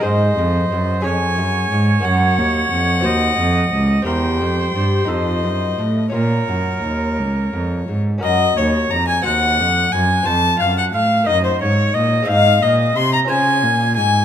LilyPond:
<<
  \new Staff \with { instrumentName = "Violin" } { \time 6/8 \key bes \minor \tempo 4. = 59 ees''4. aes''4. | ges''2. | g''4. ees''4. | des''2~ des''8 r8 |
ees''8 des''8 bes''16 aes''16 ges''4 aes''8 | a''8 f''16 ges''16 f''8 ees''16 c''16 des''8 ees''8 | f''8 ees''8 c'''16 bes''16 aes''4 aes''8 | }
  \new Staff \with { instrumentName = "Oboe" } { \time 6/8 \key bes \minor c''4. des''4.~ | des''4. ees''4. | c''2~ c''8 r8 | bes'2~ bes'8 r8 |
ees''8 des''8 bes''16 aes''16 ges''4 aes''8 | a''8 f''16 ges''16 f''8 ees''16 c''16 des''8 ees''8 | f''8 ees''8 c'''16 bes''16 aes''4 aes''8 | }
  \new Staff \with { instrumentName = "Lute" } { \time 6/8 \key bes \minor <aes ees' aes' c''>4. <des' aes' des''>4. | <bes ges' des''>4. <c' ges' c''>4. | <c' g' bes'>4. <ees' f' a'>4. | <des' f' bes'>2. |
<des' ges' bes'>4. <c' ges' c''>4. | <c' f' c''>4. <bes ees' ees''>4. | <aes c' ees' ees''>4. <des' f' c''>4. | }
  \new Staff \with { instrumentName = "Lute" } { \clef bass \time 6/8 \key bes \minor aes,8 r8 ges,8 f,8 ges,8 aes,8 | ges,8 ees,8 f,8 ees,8 f,8 r8 | e,8 f,8 g,8 f,8 ges,8 a,8 | bes,8 ges,8 ees,8 r8 f,8 aes,8 |
ges,8 ees,8 f,8 ees,8 f,8 ges,8 | f,8 ges,8 a,8 ges,8 aes,8 bes,8 | aes,8 bes,8 c8 des8 bes,8 aes,8 | }
  \new Staff \with { instrumentName = "Cello" } { \clef bass \time 6/8 \key bes \minor aes,8 f,8 ges,8 f,8 ges,8 aes,8 | ges,8 ees,8 f,8 ees,8 f,8 des,8 | e,8 f,8 g,8 f,8 ges,8 a,8 | bes,8 ges,8 ees,8 des,8 f,8 aes,8 |
ges,8 ees,8 f,8 ees,8 f,8 ges,8 | f,8 ges,8 a,8 ges,8 aes,8 bes,8 | aes,8 bes,8 c8 des8 bes,8 aes,8 | }
>>